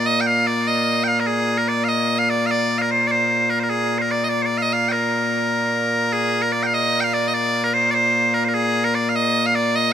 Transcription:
bagpipes
Already playing: A#2 A#3
0.06 D#5
0.21 G5
0.27 F5
0.47 D5
0.67 D#5
1.04 F5 G5
1.20 A#4
1.27 G#4
1.58 A#4
1.68 D5
1.84 F5
1.88 D#5
2.19 F5
2.30 D5
2.46 F5
2.51 D5
2.78 A#4 F5
2.91 C5
3.07 C5 D5
3.50 A#4
3.60 A#4 C5
3.70 G#4
3.98 A#4 C5
4.11 D5
4.24 D#5
4.29 D5
4.42 C5 D5
4.58 F5
4.62 D#5
4.73 F5
4.88 A#4 G5
6.13 G#4
6.42 A#4
6.52 D5
6.63 F5 G5
6.74 D#5
7.00 F5 G5
7.14 D5
7.28 D#5
7.34 D5
7.64 A#4
7.73 C5
7.91 C5 D5
8.34 A#4
8.44 A#4 C5
8.54 G#4
8.85 A#4
8.95 D5
9.09 F5
9.16 D#5
9.46 F5
9.55 D5
9.76 D#5

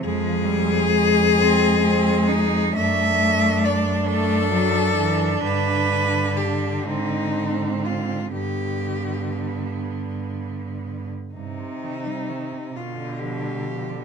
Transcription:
cello
0.03 F2 F3 G#3 G#4
0.45 G3
0.90 G#3
1.35 C4
1.80 C4
2.28 D#4
2.75 F#2 A3 D4 E5
3.65 D5
4.07 A3 A4
4.52 F#3
4.96 E3
5.43 G2 D3 B4
6.37 G4
6.85 G#2 C4 D#4
7.85 F4
8.32 G2 D3 B3 G4
11.34 G2 C3 D#4
11.58 C3
11.83 D#3
12.05 G3
12.29 D#3
12.52 C3
12.74 B2 D3 F4
12.97 D3
13.19 F3 G4
13.43 G3
13.65 F3
13.89 D3

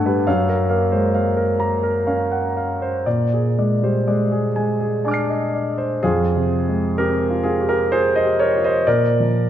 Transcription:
grand piano
Already playing: G2 A3 A4 F#5
0.06 G3 B4
0.27 F#2 F5
0.49 A#4
0.70 A#3 F5
0.92 G#3 C5
1.14 A#3 F5
1.37 A#4
1.59 A#3 A#5
1.83 A#4
2.07 C#4 F5
2.31 F#5
2.57 F5
2.82 C5
3.06 A#2 D5
3.34 G#4
3.58 G#3 D5
3.83 G3 C5
4.08 G#3 D5
4.32 G#4
4.56 G#3 G#5
4.81 G#4
5.05 D4 D5 G#5 D6
5.11 F6 C7
5.29 D#5
5.54 D5
5.78 C5
6.03 F2 F4 G#4
6.36 C3
6.69 G#3
6.98 C4 G4 A#4
7.30 F4
7.43 F4 G#4
7.61 G4
7.69 G4 A#4
7.92 F4 G#4 C5
8.16 C5 D#5
8.24 G4
8.39 A#4 C#5
8.56 F4
8.64 C5 D#5
8.87 A#2 A#4 D5
9.20 F3

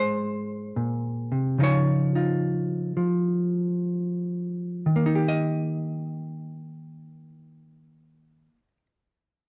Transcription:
hollow-body jazz guitar
Already playing: G#2 G#3 C5
0.76 A#2
1.32 C3
1.58 C#3 F3 D#4 F4
1.63 C#5
2.15 D#4 F4
2.97 F3
4.86 D#3
4.96 A#3
5.06 D#4
5.15 G4
5.28 D#5

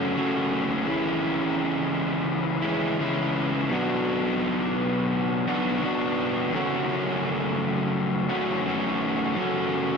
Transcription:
overdriven electric guitar
Already playing: F#2 C#3 F#3 A3 C#4 F#4
0.16 F#2 C#3 F#3 A3 C#4 F#4
0.86 C#3 E3 G#3 C#4 E4
2.62 C#3 E3 G#3 C#4 E4
2.99 C#3 E3 G#3 C#4 E4
3.70 B2 F#3 B3 D4 F#4
5.47 B2 F#3 B3 D4 F#4
5.82 B2 F#3 B3 D4 F#4
6.53 F#2 C#3 F#3 A3 C#4 F#4
8.29 F#2 C#3 F#3 A3 C#4 F#4
8.66 F#2 C#3 F#3 A3 C#4 F#4
9.35 F#2 C#3 F#3 A3 C#4 F#4

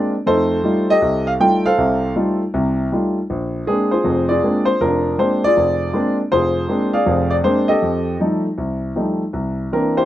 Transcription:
grand piano
Already playing: G#3 A#3 C4 D4 F4
0.26 F2 A3 D#4 A4 C5
0.64 G3 A3 D#4 F4
0.90 G4 A4 D#5
1.02 C2
1.27 F5
1.40 G3 A3 D#4 F4 G5
1.66 A4 C5 F5
1.78 C2 C3
2.16 G3 A3 D#4 F4
2.54 C2 C3
2.92 G3 A3 D#4 F4
3.30 A#1
3.67 G#3 A#3 C4 D4 G#4
3.91 F4 G#4 C5
4.04 F1 F2
4.29 F4 G#4 D5
4.43 G#3 A#3 C4 D4
4.65 C5
4.81 F1 D4 F4 A#4
5.18 G#3 A#3 C4 D4 C5
5.44 F4 G#4 D5
5.57 F1
5.93 G#3 A#3 C4 D4
6.32 F1 F4 G#4 C5
6.69 G#3 A#3 C4 D4
6.93 G#4 D5 F5
7.06 F1 F2
7.30 D5
7.44 G#3 A#3 C4 D4 C5
7.68 G4 A4 D#5
7.82 F2
8.20 F3 G3 A3 D#4
8.58 C2
8.96 F3 G3 A3 D#4
9.33 C2
9.72 E3 A#3 C4 D4 A#4
9.97 E4 G4 C5

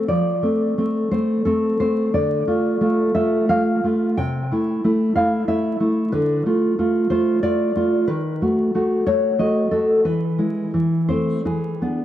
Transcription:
nylon-string guitar
0.08 F3 D5
0.43 A3 C4
0.78 A3 C4
1.11 A3 C4 C5
1.45 A3 C4 A4
1.80 A3 C4 C5
2.14 D3 D5
2.47 A3 F4
2.81 A3 F4
3.15 A3 F4 E5
3.49 A3 F4 F5
3.84 A3 F4
4.17 C3 G5
4.51 A3 E4
4.84 A3 E4
5.16 A3 E4 F5
5.48 A3 E4 E5
5.80 A3 E4
6.12 D3 B4
6.46 A3 F4
6.79 A3 F4
7.10 A3 F4 C5
7.43 A3 F4 D5
7.76 A3 F4
8.07 D#3 B4
8.42 A3 F#4
8.75 A3 F#4
9.06 A3 F#4 C#5
9.39 A3 F#4 D#5
9.71 A3 F#4 A4
10.05 E3 B4
10.38 G#3 E4
10.74 E3
11.09 A3 C4 C5
11.45 E3 G#4
11.82 B3 D4

